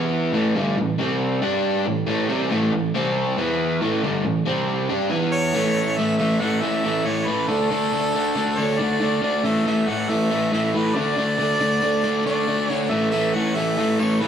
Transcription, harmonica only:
5.32 5.99 C#5 loud
5.97 6.17 E5 medium
6.18 6.42 E5 medium
6.40 6.63 F#5 medium
6.62 7.07 E5 loud
7.06 7.29 C#5 medium
7.27 7.49 B4 medium
7.48 8.59 A4 loud
8.58 8.81 C#5 medium
8.79 9.22 D5 loud
9.23 9.47 D5 medium
9.45 9.66 E5 medium
9.67 9.90 E5 medium
9.89 10.11 F#5 loud
10.10 10.53 E5 loud
10.53 10.77 E5 medium
10.76 10.97 B4 medium
10.96 12.26 D5 loud
12.26 12.69 D5 loud
12.69 12.92 C#5 loud
12.91 13.10 E5 medium
13.11 13.36 E5 medium
13.34 13.57 F#5 medium
13.55 14.01 E5 loud
13.99 14.22 C#5 medium
14.20 14.28 B4 medium

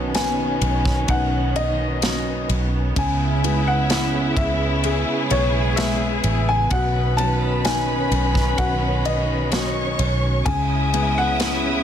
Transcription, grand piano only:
0.15 1.12 G#5 medium
1.09 1.53 F#5 medium
1.56 2.46 D#5 loud
2.98 3.70 G#5 medium
3.67 4.39 F#5 medium
4.37 5.34 E5 medium
5.31 5.79 C#5 medium
5.76 6.49 E5 medium
6.49 6.72 G#5 loud
6.71 7.20 F#5 loud
7.17 7.66 A5 medium
7.65 8.62 G#5 medium
8.58 9.07 F#5 medium
9.06 9.95 D#5 medium
10.46 11.18 G#5 loud
11.18 11.83 F#5 loud

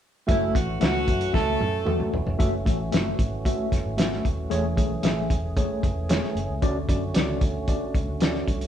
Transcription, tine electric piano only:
0.27 0.56 A3 loud
0.27 0.56 F#4 medium
0.27 0.56 E5 loud
0.80 1.09 A3 medium
0.80 1.09 F#4 medium
0.80 1.09 E5 medium
1.33 1.61 A3 medium
1.33 1.62 F#4 medium
1.33 1.62 E5 medium
1.85 2.14 A3 medium
1.85 2.14 F#4 medium
1.85 2.14 A4 medium
2.38 2.53 A3 medium
2.38 2.53 F#4 medium
2.38 2.53 E5 loud
2.65 2.80 A3 medium
2.65 2.80 F#4 medium
2.65 2.80 E5 medium
2.92 3.20 A3 medium
2.92 3.20 F#4 medium
2.92 3.20 E5 medium
3.45 3.73 A3 medium
3.45 3.73 F#4 medium
3.45 3.74 E5 medium
3.97 4.26 A3 medium
3.97 4.26 F#4 medium
3.97 4.26 E5 medium
4.50 5.26 E3 medium
4.50 4.64 A3 loud
4.50 4.65 G#4 medium
4.50 4.65 C#5 loud
4.76 4.91 A3 medium
4.76 4.91 G#4 medium
4.76 4.91 C#5 medium
5.03 5.31 A3 medium
5.03 5.31 G#4 medium
5.03 5.32 E5 medium
5.57 5.85 A3 medium
5.57 5.85 G#4 medium
5.57 5.85 C#5 medium
6.09 6.37 A3 medium
6.09 6.38 G#4 medium
6.09 6.38 C#5 medium
6.62 7.38 D3 medium
6.62 6.76 C#4 loud
6.62 6.76 F#4 medium
6.62 6.77 D5 loud
6.89 7.03 C#4 medium
6.89 7.03 F#4 medium
6.89 7.03 D5 medium
7.14 7.42 C#4 medium
7.14 7.43 F#4 medium
7.14 7.43 D5 medium
7.68 7.96 C#4 medium
7.68 7.96 F#4 medium
7.68 7.96 D5 medium
8.21 8.49 C#4 medium
8.21 8.49 F#4 medium
8.21 8.49 D5 medium

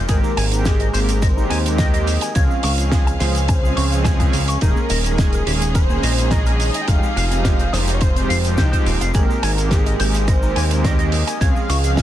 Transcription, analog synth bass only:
0.09 0.21 G#1 loud
0.37 0.90 G#1 loud
0.94 1.47 G#1 medium
1.51 2.18 D#2 loud
2.36 2.48 C#2 loud
2.64 3.17 C#2 medium
3.21 3.73 C#2 loud
3.77 4.30 C#2 loud
4.34 4.57 C#2 medium
4.62 4.74 D#1 loud
4.90 5.43 D#1 medium
5.47 6.00 D#1 loud
6.03 6.71 A#1 loud
6.88 7.01 F1 loud
7.16 7.69 F1 medium
7.73 8.26 F1 loud
8.30 8.58 F1 loud
8.58 8.70 C2 loud
8.86 8.99 D#1 medium
9.01 9.12 F1 medium
9.15 9.27 G#1 loud
9.43 9.96 G#1 loud
10.00 10.53 G#1 medium
10.56 11.24 D#2 loud
11.41 11.53 C#2 loud
11.69 12.02 C#2 medium

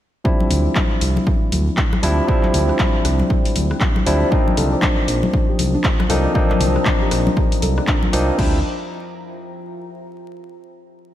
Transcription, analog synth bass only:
0.50 0.68 D2 loud
1.01 1.19 C2 medium
1.52 1.70 D2 medium
2.03 2.21 D2 medium
2.54 2.71 D2 loud
3.05 3.22 C2 medium
3.56 3.73 D2 medium
4.06 4.24 D2 medium
4.57 4.75 C2 loud
5.08 5.26 A#1 medium
5.59 5.76 C2 medium
6.10 6.27 C2 medium
6.61 6.78 C2 loud
7.12 7.29 A#1 medium
7.62 7.80 C2 medium
8.13 8.31 C2 medium
8.39 8.62 D2 medium

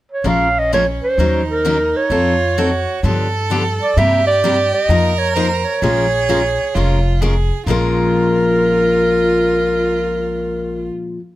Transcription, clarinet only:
0.12 0.29 C#5 medium
0.28 0.60 F5 medium
0.59 0.73 D#5 medium
0.74 0.87 C#5 medium
1.03 1.46 C5 medium
1.50 1.98 A#4 medium
1.96 3.35 C#5 medium
3.82 3.99 D5 medium
3.97 4.26 E5 loud
4.27 4.70 D5 loud
4.74 5.20 D#5 loud
5.18 5.34 C#5 medium
5.35 5.66 C5 medium
5.64 7.21 C#5 medium
7.69 10.92 A#4 medium

